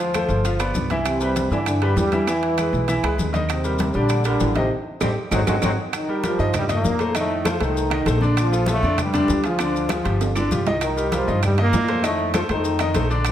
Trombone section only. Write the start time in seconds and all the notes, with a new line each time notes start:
Already playing: F3 F4
1.04 C3 C4
1.52 D3 D4
1.67 D3 D4
1.97 G2 G3
2.28 E3 E4
3.50 C3 C4
3.95 D3 D4
4.26 D3 D4
4.57 C3 C4
5.01 G3 A3 C4
5.32 F#3 G#3 C4
5.48 F#3 G#3 C4
5.63 F#3 G#3 C4
5.94 D#3 D#4
6.25 F3 F4
6.58 G2 G3
6.72 A#2 A#3
7.17 A2 A3
7.48 F3 F4
7.63 D#3 D#4
8.38 F3 F4
8.70 A2 A3
9.00 G2 G3
9.45 F3 F4
10.83 D#3 D#4
11.13 F3 F4
11.43 G2 G3
11.60 A#2 A#3
12.04 A2 A3
12.34 F3 F4
12.51 D#3 D#4
13.26 F3 F4